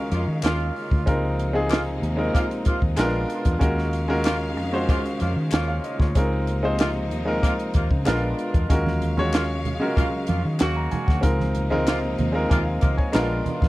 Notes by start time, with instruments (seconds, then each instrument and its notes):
Already playing: string section C#3 D#3 G#3 F5, grand piano G#3 C#4 F4 F#4 G#4 A#4
0.12 fingered electric bass F2, horn section C#3 A#3 F4, closed hi-hat
0.27 fingered electric bass D#3
0.42 fingered electric bass D#2, horn section C#3 A#3 F4, snare, clap, closed hi-hat
0.76 open hi-hat
0.91 fingered electric bass D2, kick
1.06 fingered electric bass C#2, string section C3 F3 A#3 D#4, grand piano G#3 C4 D#4 F4 A#4, kick, closed hi-hat
1.39 closed hi-hat
1.53 grand piano G#3 C4 D#4 F4 G#4
1.70 horn section C3 A#3 F4, snare, clap, closed hi-hat
2.02 fingered electric bass D#2, closed hi-hat
2.16 grand piano G#3 C4 D#4 F4 A#4
2.34 horn section C3 A#3 F4, kick, closed hi-hat
2.51 closed hi-hat
2.65 horn section C3 A#3 F4, muted fingered electric bass stroke, kick, closed hi-hat
2.82 fingered electric bass D#2, kick
2.96 fingered electric bass A#1, string section B2 G#3 D4, horn section D3 B3 F4, grand piano G#3 B3 C#4 F4 A#4, snare, clap, closed hi-hat
3.04 grand piano D4
3.30 closed hi-hat
3.45 fingered electric bass E2, kick, closed hi-hat
3.59 fingered electric bass D#2, string section C#3 D#3 F5, grand piano G#3 C#4 F4 F#4 A#4, kick, closed hi-hat
3.78 snare
3.93 closed hi-hat
4.08 grand piano G#3 C#4 F4 F#4 A#4
4.25 horn section C#3 A#3 F4, snare, clap, closed hi-hat
4.57 fingered electric bass F2, open hi-hat
4.72 grand piano G#3 C#4 F4 F#4 C5
4.88 horn section C#3 A#3 F4, kick, closed hi-hat
5.06 closed hi-hat
5.20 fingered electric bass F2, horn section C#3 A#3 F4, closed hi-hat
5.36 fingered electric bass D#3
5.51 fingered electric bass D#2, horn section C#3 A#3 F4, grand piano C#5, snare, clap, closed hi-hat
5.68 grand piano F5
5.84 grand piano D#5, closed hi-hat
6.00 fingered electric bass D2, grand piano C#5, kick, snare
6.15 fingered electric bass C#2, string section C3 F3 A#3 D#4, grand piano G#3 C4 D#4 F4 A#4, kick, closed hi-hat
6.47 closed hi-hat
6.63 grand piano G#3 C4 D#4 F4 C5
6.79 horn section C3 A#3 F4, snare, clap, closed hi-hat
7.11 fingered electric bass D#2, closed hi-hat
7.25 grand piano G#3 C4 D#4 F4 A#4
7.43 horn section C3 A#3 F4, kick, closed hi-hat
7.59 closed hi-hat
7.74 fingered electric bass D#2, horn section C3 A#3 F4, kick, closed hi-hat
7.91 fingered electric bass C#3, kick
8.05 fingered electric bass A#1, string section B2 G#3 D4, horn section D3 B3 F4, grand piano G#3 B3 D4 F4 A#4, snare, clap, closed hi-hat
8.39 closed hi-hat
8.54 fingered electric bass E2, kick, closed hi-hat
8.69 fingered electric bass D#2, string section C#3 F#3 G#3 F5, grand piano G#3 C#4 F4 F#4 A#4, kick, closed hi-hat
8.86 snare, high conga
9.01 closed hi-hat, muted conga, high conga
9.17 grand piano G#3 C#4 F4 F#4 C#5, high conga
9.33 horn section C#3 A#3 F4, snare, clap, closed hi-hat
9.65 closed hi-hat, muted conga, low conga
9.79 grand piano G#3 C#4 F4 F#4 A#4
9.96 horn section C#3 A#3 F4, kick, closed hi-hat, muted conga, low conga
10.27 fingered electric bass F2, horn section C#3 A#3 F4, closed hi-hat, muted conga, high conga
10.45 fingered electric bass D#3
10.59 fingered electric bass D#2, horn section C#3 A#3 F#4, snare, clap, closed hi-hat, muted conga
10.76 grand piano A#5
10.91 grand piano G#5, closed hi-hat, muted conga, high conga, low conga
11.06 fingered electric bass D2, grand piano F#5, kick, snare
11.20 fingered electric bass C#2, string section C3 F3 A#3 D#4, grand piano G#3 C4 D#4 F4 A#4, kick, closed hi-hat, muted conga
11.40 snare, high conga
11.55 closed hi-hat, muted conga, high conga
11.70 grand piano G#3 C4 D#4 F4 A#4, high conga
11.87 horn section C3 A#3 F4, snare, clap, closed hi-hat
12.18 fingered electric bass D#2, closed hi-hat, low conga
12.32 grand piano G#3 C4 D#4 F4 A#4
12.50 fingered electric bass D#2, horn section C3 A#3 F4, grand piano G#5, kick, closed hi-hat, muted conga, low conga
12.66 grand piano F5
12.81 fingered electric bass C#2, horn section C3 A#3 F4, grand piano D#5, kick, closed hi-hat, muted conga, high conga
12.97 grand piano C#5 G#5, kick
13.12 fingered electric bass A#1, string section B2 G#3 D4, horn section D3 B3 F4, grand piano G#3 B3 D4 F4 A#4 A#5, snare, clap, closed hi-hat
13.46 closed hi-hat, muted conga, high conga, low conga
13.62 fingered electric bass E2, kick, snare